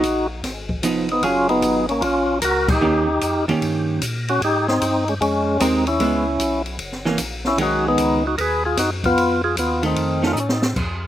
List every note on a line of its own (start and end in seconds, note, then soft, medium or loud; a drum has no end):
0.00 0.42 A#1 medium
0.00 0.27 D#4 medium
0.00 0.28 F#4 medium
0.00 kick soft
0.00 hi-hat pedal medium
0.00 ride medium
0.43 0.82 G#1 medium
0.43 kick soft
0.43 snare soft
0.43 ride medium
0.69 kick medium
0.82 1.21 F1 medium
0.82 1.07 F3 medium
0.82 1.07 B3 medium
0.82 1.07 D#4 medium
0.82 kick soft
0.82 hi-hat pedal medium
0.82 ride medium
1.09 1.24 D#4 medium
1.09 ride soft
1.13 1.24 B3 medium
1.22 1.61 F#1 medium
1.22 1.84 F#3 medium
1.22 1.48 C#4 medium
1.22 1.47 F4 medium
1.22 1.84 F4 medium
1.22 1.84 G#4 medium
1.22 kick soft
1.22 ride medium
1.49 1.87 B3 medium
1.49 1.86 D#4 loud
1.49 ride soft
1.62 2.01 G#1 loud
1.62 kick soft
1.62 hi-hat pedal medium
1.62 ride medium
1.89 2.02 A#3 medium
1.89 2.03 C#4 medium
1.89 ride soft
2.01 2.41 A#1 medium
2.01 2.40 C#4 medium
2.01 2.39 F4 loud
2.01 kick soft
2.01 ride medium
2.42 2.80 C#2 medium
2.42 2.68 F#4 medium
2.42 2.69 A#4 loud
2.42 kick soft
2.42 hi-hat pedal medium
2.42 ride medium
2.68 3.45 G4 medium
2.68 kick medium
2.68 crash medium
2.72 3.46 D#4 medium
2.80 3.19 D#2 medium
2.80 3.05 D#3 medium
2.80 3.05 A#3 medium
2.80 3.06 C#4 medium
2.80 3.06 G4 medium
3.21 3.46 F2 medium
3.21 kick soft
3.21 hi-hat pedal medium
3.21 ride medium
3.47 3.54 F2 soft
3.47 3.98 D#3 medium
3.47 3.99 A#3 medium
3.47 3.99 C#4 medium
3.47 3.99 G4 medium
3.47 ride medium
3.62 4.00 G2 medium
3.62 kick soft
3.62 ride medium
4.02 4.40 A#2 medium
4.02 kick soft
4.02 hi-hat pedal medium
4.02 ride medium
4.28 4.41 C#4 medium
4.28 4.42 F#4 medium
4.28 ride soft
4.41 4.80 G#2 medium
4.41 4.67 D#4 medium
4.41 4.67 G4 loud
4.41 kick soft
4.41 ride medium
4.68 5.05 C4 medium
4.68 5.09 D#4 medium
4.68 snare medium
4.81 5.19 G2 loud
4.81 kick soft
4.81 hi-hat pedal medium
4.81 ride medium
5.08 5.14 G#3 medium
5.08 5.15 C#4 medium
5.08 ride soft
5.20 5.59 F2 medium
5.20 5.57 G#3 medium
5.20 5.62 C#4 medium
5.20 kick soft
5.20 ride medium
5.60 5.99 D#2 medium
5.60 5.84 G#3 medium
5.60 5.84 C4 medium
5.60 5.85 D#4 medium
5.60 5.85 G4 medium
5.60 5.85 A#4 medium
5.60 kick soft
5.60 hi-hat pedal medium
5.60 ride medium
5.87 6.62 C#4 medium
5.87 6.63 E4 medium
5.87 ride soft
5.99 6.38 C#2 medium
5.99 6.24 G#3 medium
5.99 6.24 B3 medium
5.99 6.24 E4 medium
5.99 kick soft
5.99 ride medium
6.39 6.78 B1 medium
6.39 kick soft
6.39 hi-hat pedal medium
6.39 ride medium
6.66 ride soft
6.79 7.17 F#1 medium
6.79 kick soft
6.79 ride medium
6.92 snare soft
7.05 7.17 E3 medium
7.05 7.18 A#3 medium
7.05 7.18 C#4 medium
7.05 snare soft
7.18 7.57 A#1 medium
7.18 kick soft
7.18 hi-hat pedal medium
7.18 ride medium
7.45 7.59 C#4 medium
7.45 7.58 E4 medium
7.45 snare soft
7.58 7.96 B1 medium
7.58 8.19 D#3 medium
7.58 8.19 G#3 medium
7.58 8.20 C#4 medium
7.58 7.87 F#4 medium
7.58 kick soft
7.58 ride medium
7.63 7.85 D#4 medium
7.88 8.24 B3 medium
7.88 8.26 D#4 loud
7.98 8.36 C#2 medium
7.98 kick soft
7.98 hi-hat pedal medium
7.98 ride medium
8.27 8.35 D#4 medium
8.27 8.36 F#4 medium
8.37 8.76 D#2 medium
8.37 8.64 G#4 medium
8.37 8.40 A#4 medium
8.37 8.64 B4 loud
8.37 kick soft
8.37 ride medium
8.65 8.78 F4 medium
8.65 8.78 G#4 medium
8.77 9.16 F#2 medium
8.77 8.90 D#4 medium
8.77 8.91 F#4 loud
8.77 kick soft
8.77 snare soft
8.77 hi-hat pedal medium
8.77 ride medium
9.04 9.42 B3 medium
9.04 9.42 F4 loud
9.04 kick medium
9.04 ride soft
9.17 9.56 F2 medium
9.17 kick soft
9.17 ride medium
9.44 9.56 F4 medium
9.44 9.56 G#4 medium
9.56 9.95 D#2 medium
9.56 9.82 B3 medium
9.56 9.85 F4 medium
9.56 kick soft
9.56 hi-hat pedal medium
9.56 ride medium
9.83 10.20 D#3 medium
9.83 10.20 A3 medium
9.83 10.24 C4 medium
9.83 10.23 D#4 medium
9.83 ride medium
9.96 10.35 F2 medium
9.96 kick soft
9.96 ride medium
10.22 10.34 D#3 medium
10.22 10.35 A3 medium
10.22 10.35 C#4 medium
10.22 snare soft
10.27 10.32 F4 medium
10.33 10.74 A2 medium
10.33 10.39 D#4 medium
10.33 hi-hat pedal medium
10.40 10.51 C#4 medium
10.49 10.63 D#4 medium
10.49 snare medium
10.62 snare medium
10.76 11.07 F2 medium
10.76 kick medium
10.76 crash medium